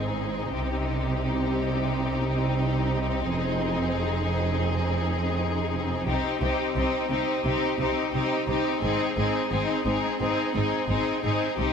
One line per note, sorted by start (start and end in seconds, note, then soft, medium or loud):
0.00 0.55 G#1 soft
0.00 0.55 G#2 soft
0.00 0.51 C4 soft
0.00 0.51 D#4 soft
0.00 0.51 G#4 soft
0.54 3.27 C2 soft
0.54 3.27 C3 soft
0.54 6.03 C4 soft
0.54 6.03 D#4 soft
0.54 3.26 G4 soft
3.30 6.03 F1 soft
3.30 6.03 F2 soft
3.30 6.02 G#4 soft
6.06 6.15 C2 soft
6.06 6.15 C3 soft
6.06 6.40 C4 soft
6.06 6.41 D#4 soft
6.06 6.39 G4 soft
6.41 6.49 C2 soft
6.41 6.50 C3 soft
6.41 6.74 C4 soft
6.41 6.76 D#4 soft
6.41 6.74 G4 soft
6.75 6.85 C2 soft
6.75 6.84 C3 soft
6.75 7.09 C4 soft
6.75 7.10 D#4 soft
6.75 7.08 G4 soft
7.10 7.18 C2 soft
7.10 7.18 C3 soft
7.10 7.44 C4 soft
7.10 7.45 D#4 soft
7.10 7.44 G4 soft
7.45 7.53 C2 soft
7.45 7.53 C3 soft
7.45 7.78 C4 soft
7.45 7.79 D#4 soft
7.45 7.78 G4 soft
7.79 7.87 C2 soft
7.79 7.87 C3 soft
7.79 8.12 C4 soft
7.79 8.13 D#4 soft
7.79 8.11 G4 soft
8.12 8.21 C2 soft
8.12 8.22 C3 soft
8.12 8.46 C4 soft
8.12 8.48 D#4 soft
8.12 8.47 G4 soft
8.48 8.56 C2 soft
8.48 8.56 C3 soft
8.48 8.82 C4 soft
8.48 8.82 D#4 soft
8.48 8.82 G4 soft
8.82 8.91 G#1 medium
8.82 8.90 G#2 soft
8.82 9.16 C4 soft
8.82 9.17 D#4 soft
8.82 9.15 G#4 soft
9.16 9.25 G#1 soft
9.16 9.25 G#2 soft
9.16 9.49 C4 soft
9.16 9.51 D#4 soft
9.16 9.49 G#4 soft
9.50 9.60 G#1 soft
9.50 9.60 G#2 soft
9.50 9.85 C4 soft
9.50 9.84 D#4 soft
9.50 9.84 G#4 soft
9.86 9.94 G#1 soft
9.86 9.94 G#2 soft
9.86 10.19 C4 soft
9.86 10.20 D#4 soft
9.86 10.19 G#4 soft
10.20 10.29 G#1 medium
10.20 10.28 G#2 medium
10.20 10.53 C4 soft
10.20 10.54 D#4 soft
10.20 10.54 G#4 soft
10.55 10.63 G#1 soft
10.55 10.63 G#2 soft
10.55 10.88 C4 soft
10.55 10.87 D#4 soft
10.55 10.88 G#4 soft
10.88 10.98 G#1 soft
10.88 10.97 G#2 soft
10.88 11.23 C4 soft
10.88 11.23 D#4 soft
10.88 11.23 G#4 soft
11.24 11.32 G#1 soft
11.24 11.32 G#2 soft
11.24 11.57 C4 soft
11.24 11.58 D#4 soft
11.24 11.58 G#4 soft
11.58 11.66 C2 soft
11.58 11.67 C3 soft
11.58 11.73 C4 soft
11.58 11.73 D#4 soft
11.58 11.73 G4 soft